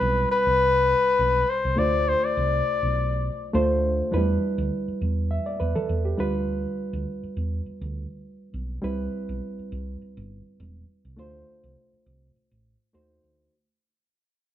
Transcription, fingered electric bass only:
0.01 0.24 B1 medium
0.47 0.93 C2 medium
1.19 1.42 B1 medium
1.65 1.75 C2 medium
1.78 2.13 D2 medium
2.37 2.60 C2 medium
2.83 3.28 B1 medium
3.54 4.00 D2 loud
4.13 4.36 E2 medium
4.58 4.69 D2 medium
4.88 muted fingered electric bass stroke soft
5.01 5.37 E2 medium
5.60 5.73 E2 medium
5.76 5.86 E3 loud
5.89 6.12 E2 medium
6.19 6.65 D2 medium
6.93 7.04 D2 medium
7.23 muted fingered electric bass stroke soft
7.37 7.59 E2 medium
7.66 muted fingered electric bass stroke soft
7.81 8.04 D2 medium
8.54 8.77 B1 medium
8.84 9.06 C2 medium
9.29 9.39 B1 medium
9.59 muted fingered electric bass stroke soft
9.72 9.95 C2 medium
10.02 muted fingered electric bass stroke soft
10.17 10.40 G1 medium
10.60 10.83 E1 medium
11.05 11.15 C2 medium
11.18 11.41 D2 medium
11.64 11.74 C2 medium
11.93 muted fingered electric bass stroke soft
12.06 12.29 C2 medium
12.36 muted fingered electric bass stroke soft
12.51 12.74 A1 medium
12.94 13.17 D#2 medium
13.24 13.47 D2 medium

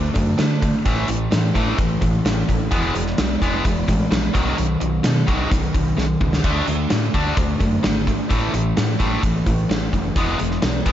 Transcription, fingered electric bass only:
0.16 0.33 F#2 medium
0.40 0.74 D3 medium
0.86 1.03 A1 medium
1.09 1.26 A1 medium
1.33 1.50 A2 medium
1.56 1.73 A1 medium
1.79 1.96 A1 medium
2.02 2.19 A1 medium
2.25 2.42 A1 medium
2.49 2.66 A1 medium
2.72 2.89 E1 medium
2.96 3.13 E1 medium
3.19 3.36 B1 medium
3.42 3.59 E1 medium
3.65 3.82 E1 medium
3.89 4.06 A1 medium
4.11 4.28 A#1 medium
4.35 4.52 B1 medium
4.59 4.76 B1 medium
4.81 4.98 B1 medium
5.05 5.22 B2 medium
5.28 5.45 B1 medium
5.52 5.69 B1 medium
5.74 5.91 B1 medium
5.98 6.15 B1 medium
6.21 6.38 C#2 medium
6.44 6.61 D2 medium
6.68 6.85 D2 medium
6.92 7.09 A2 medium
7.15 7.31 D2 medium
7.38 7.55 D2 medium
7.60 7.78 F#2 medium
7.85 8.19 G#1 medium
8.31 8.48 A1 medium
8.54 8.71 A1 medium
8.78 8.95 A2 loud
9.01 9.18 A1 medium
9.23 9.40 A1 medium
9.47 9.64 A1 medium
9.70 9.87 A1 medium
9.93 10.10 F#1 medium
10.16 10.33 E1 medium
10.41 10.57 E1 medium
10.64 10.81 B1 medium
10.86 10.92 E1 medium

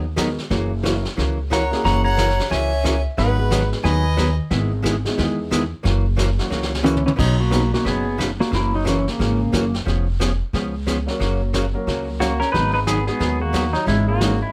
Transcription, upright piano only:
0.16 0.35 G#3 medium
0.16 0.35 B3 medium
0.16 0.36 D#4 medium
0.16 0.36 F#4 medium
0.16 0.36 A#4 medium
0.83 1.02 A#3 medium
0.83 1.02 C#4 medium
0.83 1.02 E4 medium
0.83 1.02 F#4 medium
0.83 1.03 A#4 medium
1.71 2.15 A#3 medium
1.71 2.15 C#4 medium
1.71 2.15 E4 medium
1.71 2.15 F#4 medium
1.71 2.16 G#4 loud
3.38 3.82 G#3 medium
3.38 3.82 B3 medium
3.38 3.82 D#4 medium
3.38 3.82 F#4 medium
3.38 3.82 G#4 medium
5.05 5.49 G#3 medium
5.05 5.49 B3 medium
5.05 5.49 D#4 medium
5.05 5.49 E4 medium
5.05 5.49 G#4 medium
6.38 6.82 F#3 medium
6.38 6.83 A#3 medium
6.38 6.83 C#4 medium
6.38 6.83 E4 medium
6.38 6.83 F#4 medium
7.72 8.16 F#3 medium
7.72 8.16 B3 medium
7.72 8.16 C#4 medium
7.72 8.17 D#4 medium
7.72 8.17 F#4 medium
11.06 11.50 F#3 medium
11.06 11.50 A#3 medium
11.06 11.51 C#4 medium
11.06 11.51 F#4 medium
11.06 11.51 A#4 medium
11.73 12.17 F#3 medium
11.73 12.18 A#3 medium
11.73 12.18 C#4 medium
11.73 12.18 F#4 medium
11.73 12.18 A#4 medium
13.07 13.51 G#3 medium
13.07 13.51 B3 medium
13.07 13.51 D#4 medium
13.07 13.51 F#4 medium
13.07 13.51 G#4 medium
14.07 14.51 G#3 medium
14.07 14.51 C#4 medium
14.07 14.52 D#4 medium
14.07 14.52 E4 medium
14.07 14.52 G#4 medium

